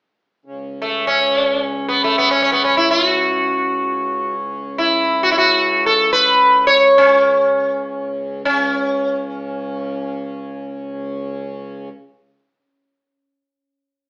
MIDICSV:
0, 0, Header, 1, 3, 480
1, 0, Start_track
1, 0, Tempo, 500000
1, 13529, End_track
2, 0, Start_track
2, 0, Title_t, "Sitar"
2, 0, Program_c, 0, 104
2, 784, Note_on_c, 0, 57, 50
2, 1025, Note_off_c, 0, 57, 0
2, 1029, Note_on_c, 0, 61, 61
2, 1806, Note_off_c, 0, 61, 0
2, 1810, Note_on_c, 0, 59, 60
2, 1956, Note_off_c, 0, 59, 0
2, 1960, Note_on_c, 0, 57, 62
2, 2090, Note_off_c, 0, 57, 0
2, 2094, Note_on_c, 0, 59, 70
2, 2213, Note_off_c, 0, 59, 0
2, 2217, Note_on_c, 0, 61, 70
2, 2315, Note_off_c, 0, 61, 0
2, 2327, Note_on_c, 0, 61, 70
2, 2418, Note_off_c, 0, 61, 0
2, 2422, Note_on_c, 0, 59, 65
2, 2532, Note_off_c, 0, 59, 0
2, 2536, Note_on_c, 0, 61, 64
2, 2656, Note_off_c, 0, 61, 0
2, 2660, Note_on_c, 0, 64, 70
2, 2787, Note_off_c, 0, 64, 0
2, 2791, Note_on_c, 0, 65, 75
2, 2935, Note_off_c, 0, 65, 0
2, 2935, Note_on_c, 0, 66, 75
2, 4168, Note_off_c, 0, 66, 0
2, 4593, Note_on_c, 0, 64, 61
2, 5000, Note_off_c, 0, 64, 0
2, 5022, Note_on_c, 0, 66, 74
2, 5096, Note_off_c, 0, 66, 0
2, 5103, Note_on_c, 0, 64, 65
2, 5160, Note_off_c, 0, 64, 0
2, 5164, Note_on_c, 0, 66, 70
2, 5625, Note_off_c, 0, 66, 0
2, 5629, Note_on_c, 0, 69, 74
2, 5878, Note_off_c, 0, 69, 0
2, 5881, Note_on_c, 0, 71, 85
2, 6398, Note_off_c, 0, 71, 0
2, 6402, Note_on_c, 0, 73, 83
2, 6701, Note_on_c, 0, 61, 70
2, 6724, Note_off_c, 0, 73, 0
2, 7746, Note_off_c, 0, 61, 0
2, 8115, Note_on_c, 0, 61, 75
2, 11431, Note_off_c, 0, 61, 0
2, 13529, End_track
3, 0, Start_track
3, 0, Title_t, "Harmonium"
3, 0, Program_c, 1, 20
3, 434, Note_on_c, 1, 37, 52
3, 438, Note_on_c, 1, 49, 50
3, 8084, Note_off_c, 1, 49, 0
3, 8089, Note_off_c, 1, 37, 0
3, 8098, Note_on_c, 1, 49, 59
3, 8104, Note_on_c, 1, 37, 62
3, 11414, Note_off_c, 1, 49, 0
3, 11419, Note_off_c, 1, 37, 0
3, 13529, End_track
0, 0, End_of_file